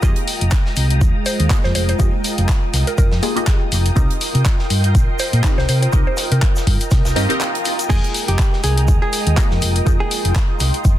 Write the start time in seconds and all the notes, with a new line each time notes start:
Already playing: F4 G5 A#5 D#6
0.02 F2 G#3 A#3 F4 G4 G#4 D#5, kick, closed hi-hat, shaker
0.16 closed hi-hat
0.28 open hi-hat, shaker
0.36 A#4
0.41 F1, closed hi-hat
0.51 kick, snare, clap, closed hi-hat, shaker
0.57 D#5
0.66 snare
0.74 C2 G5, open hi-hat, shaker
0.90 closed hi-hat
1.01 D#2, kick, closed hi-hat, shaker
1.26 C5, open hi-hat, shaker
1.40 D#2, closed hi-hat
1.50 A#3 F4 G4 G#4 D#5, kick, snare, clap, closed hi-hat, shaker
1.64 F2 C5, snare
1.75 F1 C5, open hi-hat, shaker
1.89 C5, closed hi-hat
1.99 F2 A#3 F4 G4 G#4 D#5, kick, closed hi-hat, shaker
2.24 open hi-hat, shaker
2.38 F1, closed hi-hat
2.49 kick, snare, clap, closed hi-hat, shaker
2.73 C2, snare, open hi-hat, shaker
2.87 A#4, closed hi-hat
2.98 F1 A#4, kick, closed hi-hat, shaker
3.11 F2, snare
3.22 A#3 F4 G4 G#4 D#5, open hi-hat, shaker
3.36 A#3 F4 G4 G#4 D#5, closed hi-hat
3.47 kick, snare, clap, closed hi-hat, shaker
3.72 F1, open hi-hat, shaker
3.86 closed hi-hat
3.96 C2 C4 D#4 G4 A#4 D#5 G5 C6, kick, closed hi-hat, shaker
4.10 closed hi-hat
4.21 open hi-hat, shaker
4.35 C3, closed hi-hat
4.45 kick, snare, clap, closed hi-hat, shaker
4.59 snare
4.70 G2, open hi-hat, shaker
4.84 closed hi-hat
4.95 A#1, kick, closed hi-hat, shaker
5.19 C5, open hi-hat, shaker
5.33 A#2, closed hi-hat
5.44 C4 D#4 G4 A#4 D#5, kick, snare, clap, closed hi-hat, shaker
5.58 C2 C5, snare
5.69 C3 C5, open hi-hat, shaker
5.82 C5, closed hi-hat
5.92 C2 C4 D#4 G4 A#4 D#5 A#5, kick, closed hi-hat, shaker
6.07 C5
6.17 snare, open hi-hat, shaker
6.32 C3 A#4, closed hi-hat
6.42 kick, clap, closed hi-hat, shaker
6.56 snare, shaker
6.67 G2, kick, open hi-hat
6.80 closed hi-hat, shaker
6.91 C3, kick, snare, closed hi-hat, swell, shaker
7.05 C2, snare, shaker
7.16 G2 C4 D#4 G4 A#4 D#5, open hi-hat, shaker
7.29 C4 D#4 G4 A#4 D#5, closed hi-hat
7.41 clap, closed hi-hat, shaker
7.55 closed hi-hat
7.65 open hi-hat, shaker
7.79 closed hi-hat, shaker
7.89 F2 G#3 A#3 F4 G#4 D#5 G5 A#5 D#6, kick, closed hi-hat, crash, shaker
8.04 closed hi-hat
8.14 open hi-hat, shaker
8.28 F1 G4, closed hi-hat
8.39 kick, snare, clap, closed hi-hat, shaker
8.53 snare
8.64 C2 G#4, open hi-hat, shaker
8.78 closed hi-hat
8.88 D#2, kick, closed hi-hat, shaker
9.02 G#4
9.13 open hi-hat, shaker
9.27 D#2, closed hi-hat
9.37 A#3 F4 G4 G#4 D#5, kick, snare, clap, closed hi-hat, shaker
9.51 F2, snare
9.62 F1, open hi-hat, shaker
9.76 closed hi-hat
9.86 F2 A#3 F4 G#4 D#5 G5 C6, kick, closed hi-hat, shaker
10.00 G#4
10.11 open hi-hat, shaker
10.25 F1, closed hi-hat
10.35 kick, snare, clap, closed hi-hat, shaker
10.60 C2, snare, open hi-hat, shaker
10.74 closed hi-hat
10.85 F1, kick, closed hi-hat, shaker